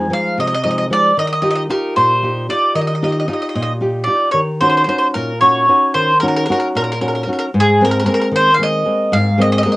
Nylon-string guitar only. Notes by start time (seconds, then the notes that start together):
0.10 F3 G#3 D#4
0.38 C3
0.64 F3 G#3 D#4
0.90 F3 G#3 D#4
1.17 D#3
1.42 D#4 F4 G4
1.69 D#4 F4 G4
1.96 A#2
2.22 D#4 F4 G4
2.49 D#4 F4 G4
2.75 D#3
3.02 D#4 F4 G4
3.28 D#4 F4 G4
3.55 A#2
3.81 D#4 F4 G4
4.07 D#4 F4 G4
4.34 D#3
4.61 C#4 D#4 F#4
4.87 C#4 D#4 F#4
5.15 A#2
5.41 C#4 D#4 F#4
5.69 C#4 D#4 F#4
5.95 D#3
6.23 C#4 D#4 F#4
6.49 C#4 D#4 F#4
6.75 A#2
7.01 C#4 D#4 F#4
7.27 C#4 D#4 F#4
7.54 G#2
7.81 G#3 A#3 C4
8.06 G#3 A#3 C4
8.32 D#3
8.58 G#3 A#3 C4
8.85 G#3 A#3 C4
9.12 G#2
9.38 G#3 A#3 C4
9.66 G#3 A#3 C4